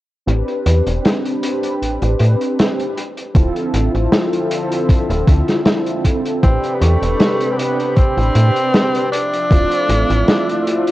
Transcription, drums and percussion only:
0.28 closed hi-hat medium
0.48 closed hi-hat medium
0.66 closed hi-hat loud
0.86 closed hi-hat medium
1.05 snare loud
1.05 closed hi-hat medium
1.25 closed hi-hat medium
1.43 closed hi-hat loud
1.63 closed hi-hat medium
1.82 closed hi-hat medium
2.02 closed hi-hat medium
2.19 closed hi-hat loud
2.41 closed hi-hat medium
2.59 snare loud
2.59 closed hi-hat medium
2.80 closed hi-hat soft
2.98 closed hi-hat loud
3.18 closed hi-hat medium
3.35 kick loud
3.35 closed hi-hat medium
3.56 closed hi-hat soft
3.74 closed hi-hat loud
3.95 closed hi-hat medium
4.12 snare loud
4.12 closed hi-hat medium
4.33 closed hi-hat medium
4.51 closed hi-hat loud
4.72 closed hi-hat medium
4.89 kick loud
4.89 closed hi-hat medium
5.10 closed hi-hat medium
5.28 kick loud
5.28 closed hi-hat medium
5.48 snare soft
5.48 closed hi-hat medium
5.66 snare loud
5.66 closed hi-hat medium
5.86 closed hi-hat medium
6.05 kick medium
6.05 closed hi-hat loud
6.25 closed hi-hat medium
6.43 kick loud
6.43 closed hi-hat medium
6.63 closed hi-hat medium
6.82 closed hi-hat loud
7.03 closed hi-hat medium
7.20 snare loud
7.20 closed hi-hat medium
7.41 closed hi-hat medium
7.59 closed hi-hat loud
7.80 closed hi-hat medium
7.96 kick loud
7.96 closed hi-hat medium
8.18 closed hi-hat medium
8.35 closed hi-hat loud
8.56 closed hi-hat medium
8.74 snare loud
8.74 closed hi-hat medium
8.95 closed hi-hat medium
9.13 closed hi-hat loud
9.33 closed hi-hat medium
9.51 kick loud
9.51 closed hi-hat medium
9.71 closed hi-hat medium
9.89 closed hi-hat loud
10.10 closed hi-hat medium
10.28 snare loud
10.28 closed hi-hat medium
10.49 closed hi-hat medium
10.67 closed hi-hat medium
10.87 closed hi-hat medium

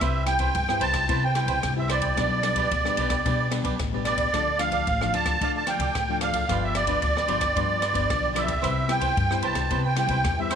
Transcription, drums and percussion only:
0.01 kick medium
0.01 cross-stick medium
0.01 ride soft
0.26 cross-stick medium
0.26 ride soft
0.39 kick medium
0.39 ride soft
0.55 kick medium
0.55 ride soft
0.69 cross-stick medium
0.81 ride soft
0.94 kick medium
0.94 cross-stick medium
0.94 ride soft
1.09 kick medium
1.09 ride soft
1.35 cross-stick medium
1.35 ride soft
1.48 kick medium
1.48 ride soft
1.63 kick medium
1.63 cross-stick medium
1.63 ride soft
1.89 cross-stick medium
1.89 ride soft
2.02 kick medium
2.02 ride soft
2.17 kick medium
2.17 cross-stick medium
2.17 ride soft
2.43 cross-stick medium
2.43 ride soft
2.56 kick medium
2.56 ride soft
2.71 kick medium
2.71 ride soft
2.85 cross-stick medium
2.97 ride soft
3.10 kick medium
3.10 cross-stick medium
3.10 ride soft
3.26 kick medium
3.26 ride soft
3.51 cross-stick medium
3.51 ride soft
3.64 kick medium
3.64 ride soft
3.79 kick medium
3.79 cross-stick medium
3.79 ride soft
4.05 cross-stick medium
4.05 ride soft
4.18 kick medium
4.18 ride soft
4.33 kick medium
4.33 cross-stick medium
4.33 ride soft
4.59 cross-stick medium
4.59 ride soft
4.72 kick medium
4.72 ride soft
4.87 kick medium
4.87 ride soft
5.01 cross-stick medium
5.14 ride soft
5.26 kick medium
5.26 cross-stick medium
5.26 ride soft
5.41 kick medium
5.41 ride soft
5.67 cross-stick medium
5.67 ride soft
5.80 kick medium
5.80 ride soft
5.95 kick medium
5.95 cross-stick medium
5.95 ride soft
6.21 cross-stick medium
6.21 ride soft
6.33 kick medium
6.33 ride soft
6.49 kick medium
6.49 cross-stick medium
6.49 ride soft
6.75 cross-stick medium
6.75 ride soft
6.87 kick medium
6.87 ride soft
7.02 kick medium
7.02 ride soft
7.17 cross-stick medium
7.28 ride soft
7.41 kick medium
7.41 cross-stick medium
7.41 ride medium
7.56 kick medium
7.56 ride soft
7.82 cross-stick medium
7.82 ride soft
7.95 kick medium
7.95 ride soft
8.10 kick medium
8.10 cross-stick medium
8.10 ride soft
8.36 cross-stick medium
8.36 ride soft
8.48 kick medium
8.48 ride soft
8.64 kick medium
8.64 cross-stick medium
8.64 ride soft
8.89 cross-stick medium
8.89 ride soft
9.01 kick medium
9.01 ride soft
9.17 kick medium
9.17 ride soft
9.31 cross-stick medium
9.42 ride soft
9.55 kick medium
9.55 cross-stick medium
9.55 ride soft
9.71 kick medium
9.71 ride soft
9.96 cross-stick medium
9.96 ride soft
10.08 kick medium
10.08 ride soft
10.24 kick medium
10.24 cross-stick medium
10.24 ride soft
10.51 cross-stick medium
10.51 ride soft

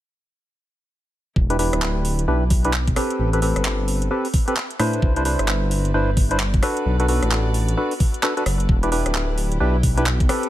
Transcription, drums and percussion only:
1.36 kick loud
1.50 closed hi-hat medium
1.59 open hi-hat loud
1.73 cross-stick medium
1.73 closed hi-hat medium
1.82 clap loud
2.05 open hi-hat loud
2.19 closed hi-hat medium
2.50 kick loud
2.50 open hi-hat loud
2.64 closed hi-hat medium
2.73 clap loud
2.87 kick loud
2.87 closed hi-hat medium
2.96 cross-stick medium
2.96 open hi-hat loud
3.10 closed hi-hat medium
3.33 closed hi-hat soft
3.42 open hi-hat loud
3.56 cross-stick medium
3.56 closed hi-hat medium
3.65 clap loud
3.88 open hi-hat loud
4.02 closed hi-hat medium
4.25 open hi-hat medium
4.34 kick loud
4.34 open hi-hat loud
4.48 closed hi-hat medium
4.56 clap loud
4.71 closed hi-hat soft
4.79 cross-stick medium
4.79 open hi-hat loud
4.93 closed hi-hat medium
5.02 kick loud
5.16 closed hi-hat soft
5.25 open hi-hat loud
5.39 cross-stick medium
5.39 closed hi-hat medium
5.48 clap loud
5.71 open hi-hat loud
5.85 closed hi-hat medium
6.17 kick loud
6.17 open hi-hat loud
6.31 closed hi-hat medium
6.40 clap loud
6.54 kick loud
6.54 closed hi-hat soft
6.63 cross-stick medium
6.63 open hi-hat loud
6.77 closed hi-hat medium
7.00 closed hi-hat medium
7.08 open hi-hat loud
7.23 cross-stick soft
7.23 closed hi-hat medium
7.31 clap loud
7.54 open hi-hat medium
7.68 closed hi-hat medium
7.91 open hi-hat medium
8.00 kick loud
8.00 open hi-hat loud
8.14 closed hi-hat medium
8.23 clap loud
8.37 closed hi-hat soft
8.46 cross-stick medium
8.46 open hi-hat loud
8.60 closed hi-hat medium
8.69 kick loud
8.83 closed hi-hat medium
8.92 open hi-hat loud
9.06 cross-stick soft
9.06 closed hi-hat medium
9.15 clap loud
9.38 open hi-hat medium
9.52 closed hi-hat medium
9.83 kick loud
9.83 open hi-hat loud
9.97 closed hi-hat medium
10.06 clap loud
10.20 kick loud
10.20 closed hi-hat medium
10.29 cross-stick medium
10.29 open hi-hat loud
10.43 closed hi-hat medium

